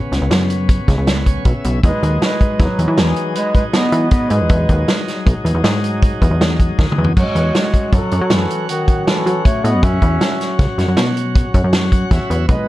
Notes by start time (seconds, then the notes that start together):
Already playing: C#3 B3 C#4
0.12 C#2, snare, closed hi-hat
0.22 C#2
0.31 F#2, snare, closed hi-hat
0.50 closed hi-hat
0.69 kick, closed hi-hat
0.88 C#2, kick, snare, closed hi-hat
0.98 C#2
1.07 snare, closed hi-hat
1.26 C#5, kick, closed hi-hat
1.45 B1 E5, kick, closed hi-hat
1.64 B1, closed hi-hat
1.83 E2 F#3 G#3 D#4 B4, kick, closed hi-hat
2.02 D#2, closed hi-hat
2.22 G#3 B4, snare, closed hi-hat
2.41 kick, closed hi-hat
2.60 E2 F#3 B4, kick, snare, closed hi-hat
2.79 E2, closed hi-hat
2.88 E3
2.98 E2 E3 G#4, snare, closed hi-hat
3.16 closed hi-hat
3.35 G#3 B4, closed hi-hat
3.55 G#3 B4, kick, closed hi-hat
3.73 B3 D#5, snare, closed hi-hat
3.92 E3, closed hi-hat
4.11 B3 D#5, kick, closed hi-hat
4.30 G#2 G#3 B4, closed hi-hat
4.40 E2
4.49 E2, kick, closed hi-hat
4.69 D#2, kick, closed hi-hat
4.88 snare, closed hi-hat
5.08 snare, closed hi-hat
5.26 B1, kick, closed hi-hat
5.45 E2, closed hi-hat
5.54 E2
5.64 G#2, snare, closed hi-hat
5.84 closed hi-hat
6.02 kick, closed hi-hat
6.22 E2, kick, closed hi-hat
6.31 E2
6.41 snare, closed hi-hat
6.60 kick, closed hi-hat
6.79 D#2, kick, snare
6.92 mid tom
6.98 E2
7.04 floor tom
7.17 F#2 F#3 G#3 C#4 F#4 C#5, kick, closed hi-hat, crash
7.35 E2, closed hi-hat
7.55 snare, closed hi-hat
7.74 kick, closed hi-hat
7.92 F#2 F#3 A4, kick, closed hi-hat
8.11 F#2, closed hi-hat
8.21 F#3
8.30 F#2 E3 A4, snare, closed hi-hat
8.50 closed hi-hat
8.69 D#3 F#4, closed hi-hat
8.88 kick, closed hi-hat
9.07 E3 A4, snare, closed hi-hat
9.26 F#3, closed hi-hat
9.45 A3 C#5, kick, closed hi-hat
9.64 A2 B3 D#5, closed hi-hat
9.74 F#2
9.83 F#2 C#4 E5, kick, closed hi-hat
10.02 E2, kick, closed hi-hat
10.21 snare, closed hi-hat
10.41 snare, closed hi-hat
10.59 C#2, kick, snare, closed hi-hat
10.78 F#2, snare, closed hi-hat
10.88 F#2
10.97 B2, snare, closed hi-hat
11.17 closed hi-hat
11.36 kick, closed hi-hat
11.54 F#2, kick, closed hi-hat
11.64 F#2
11.73 snare, closed hi-hat
11.92 F#5, kick, closed hi-hat
12.11 E2 E5, kick, snare, closed hi-hat
12.30 E2, closed hi-hat
12.48 B1 F#3 G#3 B3 D#4 B4, kick, closed hi-hat